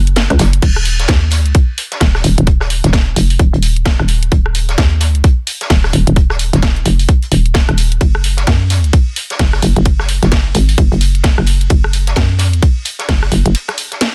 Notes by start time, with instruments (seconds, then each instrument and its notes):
Already playing: fm bass F#1
0.07 closed hi-hat
0.16 snare, closed hi-hat
0.30 fm bass C#2, cross-stick, closed hi-hat
0.39 fm bass F#1, snare, closed hi-hat, open hi-hat
0.53 closed hi-hat
0.62 fm bass D#1, kick, closed hi-hat, crash
0.76 cross-stick
0.84 closed hi-hat, open hi-hat
0.99 snare, closed hi-hat
1.08 fm bass D#2, kick, snare, closed hi-hat
1.30 snare, closed hi-hat, open hi-hat
1.46 closed hi-hat
1.54 kick, closed hi-hat
1.78 closed hi-hat, open hi-hat
1.92 snare, closed hi-hat
2.00 fm bass D#1, kick, snare, closed hi-hat, open hi-hat
2.15 cross-stick, snare
2.24 fm bass D#1, closed hi-hat, open hi-hat
2.38 fm bass D#1, closed hi-hat
2.47 kick, closed hi-hat
2.60 cross-stick, snare
2.70 closed hi-hat, open hi-hat
2.84 fm bass D#1, snare, closed hi-hat
2.93 kick, snare, closed hi-hat
3.16 fm bass F1, closed hi-hat, open hi-hat
3.30 open hi-hat
3.39 fm bass D#1, kick, closed hi-hat
3.53 fm bass D#1, closed hi-hat
3.63 closed hi-hat, open hi-hat
3.76 closed hi-hat
3.85 kick, snare, closed hi-hat
3.99 fm bass D#1, cross-stick
4.08 closed hi-hat, open hi-hat
4.23 closed hi-hat
4.31 fm bass D#1, kick, closed hi-hat
4.46 cross-stick
4.55 closed hi-hat, open hi-hat
4.69 snare, closed hi-hat
4.78 fm bass D#2, kick, snare, closed hi-hat
5.00 snare, closed hi-hat, open hi-hat
5.15 closed hi-hat
5.24 kick, closed hi-hat
5.47 closed hi-hat, open hi-hat
5.61 snare, closed hi-hat
5.70 fm bass D#1, kick, snare, closed hi-hat, open hi-hat
5.84 cross-stick, snare
5.93 fm bass D#1, closed hi-hat, open hi-hat
6.07 fm bass D#1, closed hi-hat
6.16 kick, closed hi-hat
6.30 cross-stick, snare
6.39 closed hi-hat, open hi-hat
6.53 fm bass D#1, snare, closed hi-hat
6.62 kick, snare, closed hi-hat
6.76 closed hi-hat
6.86 fm bass F1, closed hi-hat, open hi-hat
6.99 open hi-hat
7.09 kick, closed hi-hat
7.23 closed hi-hat
7.32 fm bass D#1, closed hi-hat, open hi-hat
7.46 closed hi-hat
7.54 kick, snare, closed hi-hat
7.69 fm bass D#1, cross-stick, closed hi-hat
7.77 closed hi-hat, open hi-hat
7.92 closed hi-hat
8.00 fm bass F#1, kick, closed hi-hat, ride
8.15 cross-stick
8.24 closed hi-hat, open hi-hat
8.37 snare, closed hi-hat
8.47 fm bass F#2, kick, snare, closed hi-hat, ride
8.70 snare, closed hi-hat, open hi-hat
8.84 closed hi-hat
8.93 kick, closed hi-hat, ride
9.16 closed hi-hat, open hi-hat
9.30 snare, closed hi-hat
9.39 fm bass F#1, kick, snare, closed hi-hat, open hi-hat, ride
9.53 cross-stick, snare
9.62 fm bass F#1, closed hi-hat, open hi-hat
9.76 fm bass F#1, closed hi-hat
9.85 kick, closed hi-hat, ride
9.99 cross-stick, snare
10.09 closed hi-hat, open hi-hat
10.23 fm bass F#1, snare, closed hi-hat
10.32 kick, snare, closed hi-hat, ride
10.54 fm bass G#1, closed hi-hat, open hi-hat
10.69 open hi-hat
10.78 fm bass F#1, kick, closed hi-hat, ride
10.92 fm bass F#1, closed hi-hat
11.01 closed hi-hat, open hi-hat
11.15 closed hi-hat
11.24 kick, snare, closed hi-hat, ride
11.38 fm bass F#1, cross-stick
11.46 closed hi-hat, open hi-hat
11.61 closed hi-hat
11.70 fm bass F#1, kick, closed hi-hat, ride
11.84 cross-stick
11.93 closed hi-hat, open hi-hat
12.07 snare, closed hi-hat
12.16 fm bass F#2, kick, snare, closed hi-hat, ride
12.38 snare, closed hi-hat, open hi-hat
12.53 closed hi-hat
12.63 kick, closed hi-hat, ride
12.85 closed hi-hat, open hi-hat
12.99 snare, closed hi-hat
13.09 fm bass F#1, kick, snare, closed hi-hat, open hi-hat, ride
13.22 cross-stick, snare
13.32 fm bass F#1, closed hi-hat, open hi-hat
13.46 fm bass F#1, closed hi-hat
13.55 closed hi-hat, ride
13.68 cross-stick, snare, closed hi-hat
13.77 closed hi-hat, open hi-hat
13.92 snare, closed hi-hat
14.01 snare, closed hi-hat, ride